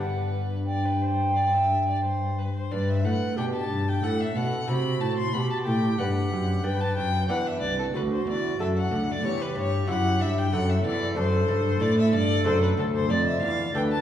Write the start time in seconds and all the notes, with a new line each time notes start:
Already playing: B3 D4 G4 F#5
0.00 G2 B4
0.66 D5 G5
0.85 B4
1.02 C5
1.36 D5
1.53 E5
1.89 D5
2.04 C5
2.38 B4
2.56 C5
2.71 G2 B4 D5
2.90 E5
3.04 A2 F#5
3.37 B2 D4 G4 G5
3.54 A5
3.70 G2
3.88 G5
4.02 A2 A4 F#5
4.20 E5
4.36 B2 F#5
4.68 C3 C4 F#4 C5 B5
5.00 A2 A5
5.18 C6
5.33 B2 G4 B5
5.50 A5
5.65 A2 G5
5.98 G2 D4 B4 F#5
6.30 F#2
6.63 G2 B3 B4 G5
6.81 A5
6.96 F#2 G5
7.29 E2 D4 B4 F#5
7.47 E5
7.61 C2 D5
7.79 A4
7.94 D2 F#4 B4
8.12 C5
8.26 E2 D5
8.59 F#2 F#4 A4 E5
8.77 F#5
8.91 D2
9.11 D5
9.23 E2 G4 C#5
9.42 B4
9.55 G2 C#5
9.87 F#2 E4 G4 F#5
10.19 G2 E5
10.38 G5
10.52 F#2 A4 F#5
10.70 E5
10.84 E2 D5
11.16 F#2 A3 D4 A4 C5
11.48 G2
11.80 A2 A3 D5
11.99 E5
12.13 G2 D5
12.45 F#2 A3 D4 A4 C5
12.62 B4
12.77 D2 A4
12.95 C5
13.09 F2 D5
13.27 E5
13.42 E2 F5
13.74 D2 D4 A4 B4 G5
13.92 A5